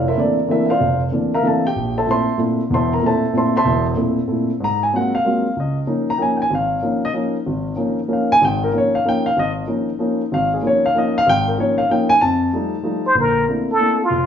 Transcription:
Already playing: grand piano F1 A2
0.08 grand piano E4 A#4 C5 E5
0.17 grand piano E3 A3 A#3 C4 D4 A4 A#4 D5
0.48 grand piano E3 A3 A#3 C4 D4 E4 A#4 C5 E5
0.66 grand piano E5 F5
0.71 grand piano F4 C5 D5
0.80 grand piano F1
1.12 grand piano E3 A3 A#3 C4 D4
1.34 grand piano A#4 E5 F5 A#5
1.42 grand piano E3 A3 A#3 C4 D4
1.47 grand piano A4 E5 F5 A5
1.67 grand piano G4 G5
1.76 grand piano A#1
1.98 grand piano A4 C5 E5 A5
2.07 grand piano A#2 A3 C4 E4
2.11 grand piano C5 E5 A5 C6
2.38 grand piano A#2 A3 C4 E4
2.70 grand piano E1 E2
2.74 grand piano C5 E5 A5 C6
2.93 grand piano A#4 A#5
3.02 grand piano A#2 A3 C4 E4
3.06 grand piano A4 C5 E5 A5
3.33 grand piano A#2 A3 C4 E4
3.37 grand piano C5 E5 A5 C6
3.57 grand piano C5 E5 A5 C6
3.65 grand piano E1 E2
3.96 grand piano A#2 A3 C4 E4
4.27 grand piano A#2 A3 C4 E4
4.60 grand piano G#2
4.64 grand piano A#5
4.83 grand piano G#5
4.93 grand piano F#3 G#3 A#3 C4 F4 F#5
5.15 grand piano F5
5.25 grand piano F#3 G#3 A#3 C4 F4
5.56 grand piano C#2 D#5
5.87 grand piano F3 A#3 C#4 D#4
6.10 grand piano A#5
6.18 grand piano F3 A#3 C#4 D#4 G5
6.22 grand piano G#5
6.37 grand piano G5
6.42 grand piano G#5
6.50 grand piano G#1
6.55 grand piano F5
6.82 grand piano F3 A#3 C#4 D#4
7.05 grand piano D#5
7.13 grand piano F3 A#3 C#4 D#4
7.46 grand piano G#1
7.76 grand piano F3 A#3 C#4 D#4
8.08 grand piano F3 A#3 C#4 D#4
8.13 grand piano F5
8.32 grand piano G#5
8.41 grand piano G#1 G#2 G5
8.64 grand piano A#4
8.73 grand piano F3 A#3 C#4 D#4
8.78 grand piano C#5
8.95 grand piano F5
9.05 grand piano F3 A#3 C#4 D#4 G5
9.26 grand piano F5
9.37 grand piano G#1 D#5
9.67 grand piano F3 A#3 C#4 D#4
9.99 grand piano F3 A#3 C#4 D#4
10.32 grand piano G#1 F5
10.54 grand piano G#4
10.62 grand piano F3 A#3 C#4 D#4
10.67 grand piano C#5
10.86 grand piano F5
10.94 grand piano F3 A#3 C#4 D#4
10.98 grand piano D#5
11.18 grand piano F5
11.27 grand piano G#1 G#2 G5
11.48 grand piano A#4
11.58 grand piano F3 A#3 C#4 D#4 C#5
11.78 grand piano F5
11.89 grand piano F3 A#3 C#4 D#4 G5
12.09 grand piano G#5
12.21 grand piano F2 A5
12.53 grand piano F3 G3 A3 D#4
12.83 grand piano F3 G3 A3 D#4
13.07 muted trumpet C5
13.15 grand piano A#1 D3
13.19 muted trumpet A#4
13.48 grand piano A3 A#3 C4 D4 E4
13.72 muted trumpet A4
13.78 grand piano A3 A#3 C4 D4 E4
14.04 muted trumpet F4
14.10 grand piano F1

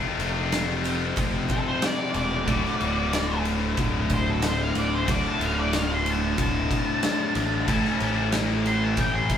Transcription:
Already playing: steel-string acoustic guitar F2 A3 A4, distorted electric guitar F2 C3 F3 A3 C4 F4
0.19 picked electric bass F1, steel-string acoustic guitar C3, ride
0.52 steel-string acoustic guitar A3, snare, ride
0.84 steel-string acoustic guitar C4, ride
1.16 picked electric bass F1, steel-string acoustic guitar F4, kick, ride
1.48 steel-string acoustic guitar C4, lead electric guitar A4, kick, ride
1.67 lead electric guitar C5
1.82 steel-string acoustic guitar F3, lead electric guitar D5, snare, ride
2.14 picked electric bass E1, steel-string acoustic guitar A3, lead electric guitar D5, ride
2.46 picked electric bass D1, distorted electric guitar D2 A2 D3 A3 F#4, kick, ride
2.65 snare
2.81 picked electric bass D1, ride
3.13 snare, ride
3.45 ride
3.77 picked electric bass D1, distorted electric guitar D2 A2 D3, kick, ride
4.10 kick, ride
4.14 lead electric guitar C5
4.30 lead electric guitar A4
4.42 snare, ride
4.47 lead electric guitar C5
4.62 lead electric guitar F5
4.75 picked electric bass D1, lead electric guitar D5, ride
4.95 lead electric guitar C5
5.05 picked electric bass D1, distorted electric guitar D2 A2 D3 A3 F#4, kick, ride
5.10 lead electric guitar D5
5.27 lead electric guitar A5
5.40 picked electric bass D1, ride
5.44 lead electric guitar F5
5.59 lead electric guitar D5
5.73 snare, ride
5.77 lead electric guitar F5
5.94 lead electric guitar C6
6.06 ride
6.11 lead electric guitar A5
6.36 picked electric bass D1, distorted electric guitar D2 A2 D3, kick, ride
6.42 lead electric guitar A5
6.71 kick, ride
7.03 snare, ride
7.35 picked electric bass A1, ride
7.67 picked electric bass A1, distorted electric guitar A2 E3 A3 C#4 E4 A4, kick, ride
7.85 snare
8.00 picked electric bass A1, ride
8.32 snare, ride
8.66 lead electric guitar C6, ride
8.84 lead electric guitar A5
8.96 picked electric bass A1, distorted electric guitar A2 E3 A3, kick, ride
9.00 lead electric guitar G5
9.15 lead electric guitar C6
9.30 lead electric guitar C6, kick, ride

